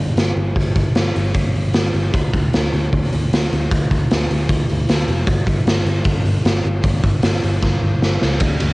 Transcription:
Already playing: picked electric bass G1
0.16 picked electric bass G1, snare, open hi-hat
0.36 picked electric bass G1, open hi-hat
0.56 picked electric bass G1, kick, open hi-hat
0.76 picked electric bass G1, kick, open hi-hat
0.95 picked electric bass G1, snare, open hi-hat
1.16 picked electric bass G1, open hi-hat
1.34 picked electric bass G1, kick, open hi-hat
1.55 picked electric bass G1, open hi-hat
1.74 picked electric bass G1, snare, open hi-hat
1.94 picked electric bass G1, open hi-hat
2.14 picked electric bass D2, kick, open hi-hat
2.33 picked electric bass D2, kick, open hi-hat
2.53 picked electric bass D2, snare, open hi-hat
2.73 picked electric bass D2, open hi-hat
2.93 picked electric bass D2, kick, open hi-hat
3.13 picked electric bass D2, open hi-hat
3.33 picked electric bass D2, snare, open hi-hat
3.53 picked electric bass D2, open hi-hat
3.72 picked electric bass D2, kick, open hi-hat
3.91 picked electric bass D2, kick, open hi-hat
4.11 picked electric bass D2, snare, open hi-hat
4.31 picked electric bass D2, open hi-hat
4.49 picked electric bass D2, kick, open hi-hat
4.69 picked electric bass D2, open hi-hat
4.89 picked electric bass D2, snare, open hi-hat
5.08 picked electric bass F1, open hi-hat
5.27 picked electric bass G1, kick, open hi-hat
5.47 picked electric bass G1, kick, open hi-hat
5.66 picked electric bass G1, snare, open hi-hat
5.85 picked electric bass G1, open hi-hat
6.04 picked electric bass G1, kick, open hi-hat
6.25 picked electric bass G1, open hi-hat
6.45 picked electric bass G1, snare, open hi-hat
6.65 picked electric bass G1, open hi-hat
6.84 picked electric bass G1, kick, open hi-hat
7.04 picked electric bass G1, kick, open hi-hat
7.23 picked electric bass G1, snare, open hi-hat
7.34 snare
7.44 picked electric bass G1, open hi-hat
7.62 picked electric bass G1, kick, snare
7.83 picked electric bass G1
8.01 picked electric bass G1, snare
8.22 picked electric bass C#2, snare
8.40 picked electric bass D2, kick, ride
8.60 picked electric bass D2, ride

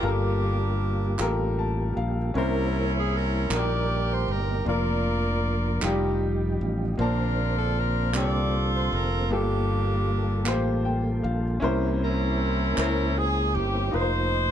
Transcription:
0.01 fingered electric bass G1, grand piano G2 F4 G4 A4 A#4, tonewheel organ G3 A#3 F4 G4, saxophone section A#3
0.05 saxophone section D4 G4, tonewheel organ G4
1.18 fingered electric bass A1, grand piano F4 G4 A4 A#4, clap
1.59 grand piano A5
1.97 fingered electric bass A#1, grand piano F5
2.34 fingered electric bass C2, grand piano C3 C#4 E4 A#4 C5, tonewheel organ A#3 C#4 E4 C5, saxophone section C#4 E4 A#4
2.96 saxophone section G#4
3.15 saxophone section A#4
3.49 fingered electric bass A#1, grand piano A#2 A#3 D#4 F#4 A#4, tonewheel organ G3 A#3 D#4 A#4, clap
3.54 saxophone section G4 A#4 D5
3.58 grand piano G4
4.12 saxophone section C5
4.28 fingered electric bass G1, saxophone section A#4
4.65 fingered electric bass F1, tonewheel organ F3 A#3 D4 A#4, grand piano A#3 D4 F4 A#4, saxophone section F4 A#4 D5
5.81 fingered electric bass F1, tonewheel organ F3 G3 D#4 G4, grand piano G3 D#4 F4 G4, clap
5.87 grand piano G3
6.61 fingered electric bass A1
6.97 fingered electric bass A#1, grand piano A#2 A#3 C4 D4 A5, tonewheel organ D3 A#3 C4 C5, saxophone section D4 F4 A#4
7.58 saxophone section A4
7.78 saxophone section A#4
8.13 fingered electric bass C2, grand piano A#3 C4 D4 G4, saxophone section F4 A4 D5, clap
8.75 saxophone section C5
8.92 fingered electric bass F1, saxophone section A#4
9.30 fingered electric bass G1, grand piano G2 A#3 F4 G4 A4, tonewheel organ G3 A#3 F4 A4, saxophone section A#3 D4 G4
10.44 fingered electric bass A1, grand piano A#3 F4 G4 C5, clap
10.85 grand piano G5
11.23 fingered electric bass A#1, grand piano F5
11.60 fingered electric bass C2, grand piano C3 C#4 E4 A#4 C5, tonewheel organ A#3 C#4 E4 C5
12.02 saxophone section C#4 E4 A#4
12.75 fingered electric bass C#2, grand piano C#4 E4 A#4 C5, saxophone section A#4, clap
13.16 saxophone section G#4
13.55 fingered electric bass G1, saxophone section G4
13.91 fingered electric bass F1, tonewheel organ A#3 D#4 F4 B4, grand piano D#4 F4 A#4 B4, saxophone section C5
13.95 saxophone section D#4
14.00 tonewheel organ C5, grand piano C5

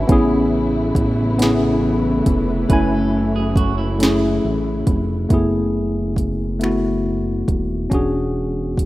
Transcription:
Already playing: tine electric piano C#4 D4 F#4 B4 E5 G#5 A5, string section E4
0.07 analog synth bass A1, string section C#3 E3 A3 B3, tine electric piano B3 C#4 E4, kick, closed hi-hat
0.12 tine electric piano G#4
0.95 analog synth bass A1, kick, closed hi-hat
1.38 tine electric piano B3 C#4 E4, snare, closed hi-hat
1.43 tine electric piano G#4
2.26 analog synth bass F1, kick, closed hi-hat
2.69 analog synth bass F#1, string section F#3, tine electric piano A3 C#4 E4, clean electric guitar B4, kick, closed hi-hat
2.73 tine electric piano G#5
2.92 clean electric guitar A4
3.36 clean electric guitar G#4
3.56 clean electric guitar F#4, kick, closed hi-hat
3.78 clean electric guitar E4
3.99 tine electric piano A3 C#4 E4, snare, closed hi-hat
4.03 tine electric piano G#4
4.45 analog synth bass A1
4.87 analog synth bass F1, kick, closed hi-hat
5.29 analog synth bass F#1, tine electric piano A3 B3 E4, kick, closed hi-hat
5.34 tine electric piano G#4
6.16 kick, closed hi-hat
6.60 tine electric piano A3 B3 E4, closed hi-hat
6.64 tine electric piano F#4, finger snap
7.48 analog synth bass D#1, kick, closed hi-hat
7.90 analog synth bass E1, tine electric piano C#4 D4 F#4, kick, closed hi-hat
7.95 tine electric piano G#4
8.77 kick, closed hi-hat

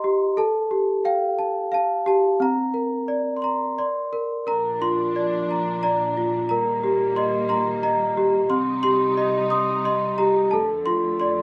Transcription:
Already playing: celesta D#5 A#5 C6
0.04 celesta G4
0.37 celesta A4 A5
0.71 celesta G4
1.05 celesta F5 G5
1.39 celesta A5
1.72 celesta F5 A5
2.06 celesta G4 A5
2.40 celesta C4 A#5
2.74 celesta A#4
3.08 celesta D5
3.37 celesta C6
3.42 celesta A#5 C6
3.78 celesta D5 C6
4.13 celesta A#4
4.47 string section A#2 F3 D4, celesta A#4 A#5
4.81 celesta F4 C6
5.16 celesta D5
5.51 celesta A#5
5.83 celesta D5 A#5
6.17 celesta F4
6.49 string section D#3 G3 A#3, celesta A#4 A#5
6.84 celesta G4
7.16 celesta D#5 C6
7.49 celesta A#5 C6
7.83 celesta D#5 A#5
8.17 celesta G4
8.50 string section C3 G3 D#4, celesta C4 C6
8.83 celesta G4 C6
9.17 celesta D#5
9.50 celesta C6 D#6
9.85 celesta D#5 C6
10.18 celesta G4 A#5
10.51 string section F2 D3 A3, celesta A4 A5
10.86 celesta F4 C6
11.20 celesta D5 C6

